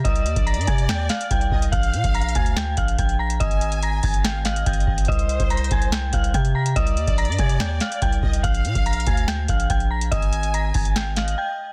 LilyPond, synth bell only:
\new Staff \with { instrumentName = "Synth bell" } { \time 4/4 \key c \minor \tempo 4 = 143 <ees'' ees'''>4 <bes'' bes'''>8 <aes'' aes'''>8 <g'' g'''>8 <f'' f'''>8 <g'' g'''>4 | <f'' f'''>4 <bes'' bes'''>8 <aes'' aes'''>8 <g'' g'''>8 <f'' f'''>8 <g'' g'''>8 <bes'' bes'''>8 | <ees'' ees'''>4 <bes'' bes'''>8 <aes'' aes'''>8 <g'' g'''>8 <f'' f'''>8 <g'' g'''>4 | <ees'' ees'''>4 <bes'' bes'''>8 <aes'' aes'''>8 <g'' g'''>8 <f'' f'''>8 <g'' g'''>8 <bes'' bes'''>8 |
<ees'' ees'''>4 <bes'' bes'''>8 <aes'' aes'''>8 <g'' g'''>8 <f'' f'''>8 <g'' g'''>4 | <f'' f'''>4 <bes'' bes'''>8 <aes'' aes'''>8 <g'' g'''>8 <f'' f'''>8 <g'' g'''>8 <bes'' bes'''>8 | <ees'' ees'''>4 <bes'' bes'''>8 <aes'' aes'''>8 <g'' g'''>8 <f'' f'''>8 <g'' g'''>4 | }